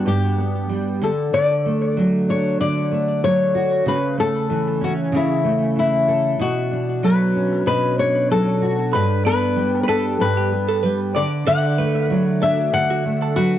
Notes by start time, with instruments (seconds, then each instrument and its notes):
Already playing: steel-string acoustic guitar G3 B3 D4
0.06 steel-string acoustic guitar G2, nylon-string guitar G4
0.38 steel-string acoustic guitar B3
0.69 steel-string acoustic guitar G3
1.02 steel-string acoustic guitar D3, nylon-string guitar A4
1.33 steel-string acoustic guitar D3, nylon-string guitar D5
1.66 steel-string acoustic guitar A3
1.97 steel-string acoustic guitar F#3, nylon-string guitar C#5
2.29 steel-string acoustic guitar D4, nylon-string guitar C#5
2.60 steel-string acoustic guitar D3, nylon-string guitar D5
2.92 steel-string acoustic guitar A3
3.23 steel-string acoustic guitar F#3, nylon-string guitar C#5
3.55 steel-string acoustic guitar F#4
3.86 steel-string acoustic guitar C#3, nylon-string guitar B4
4.18 steel-string acoustic guitar A3, nylon-string guitar A4
4.50 steel-string acoustic guitar E3
4.81 steel-string acoustic guitar C#4, nylon-string guitar F#4
5.12 steel-string acoustic guitar C#3
5.16 nylon-string guitar E4
5.44 steel-string acoustic guitar A3
5.76 steel-string acoustic guitar E3, nylon-string guitar E4
6.08 steel-string acoustic guitar A4
6.39 steel-string acoustic guitar B2, nylon-string guitar F#4
6.71 steel-string acoustic guitar D4
7.03 steel-string acoustic guitar F#3, nylon-string guitar B4
7.35 steel-string acoustic guitar C#4
7.66 steel-string acoustic guitar B2, nylon-string guitar B4
7.98 steel-string acoustic guitar D4, nylon-string guitar C#5
8.30 steel-string acoustic guitar F#3, nylon-string guitar A4
8.62 steel-string acoustic guitar F#4
8.93 steel-string acoustic guitar G2, clean electric guitar B4, nylon-string guitar B4
9.25 steel-string acoustic guitar B3, nylon-string guitar B4, clean electric guitar D5
9.56 steel-string acoustic guitar G3
9.83 nylon-string guitar B4
9.88 steel-string acoustic guitar D4, nylon-string guitar A4, clean electric guitar B4
10.20 steel-string acoustic guitar G2, nylon-string guitar B4
10.37 clean electric guitar G4
10.52 steel-string acoustic guitar B3
10.69 clean electric guitar A4
10.83 steel-string acoustic guitar G3, clean electric guitar B4
11.15 steel-string acoustic guitar D3, clean electric guitar D5, nylon-string guitar D5
11.47 steel-string acoustic guitar D3, clean electric guitar A4, nylon-string guitar F#5
11.78 steel-string acoustic guitar A3, clean electric guitar B4
12.10 steel-string acoustic guitar F#3
12.16 nylon-string guitar E5
12.42 steel-string acoustic guitar D4, clean electric guitar A4, nylon-string guitar E5
12.73 steel-string acoustic guitar D3, nylon-string guitar F#5
12.90 clean electric guitar F#4
13.05 steel-string acoustic guitar A3
13.22 clean electric guitar A4
13.36 steel-string acoustic guitar F#3, nylon-string guitar F#4, clean electric guitar B4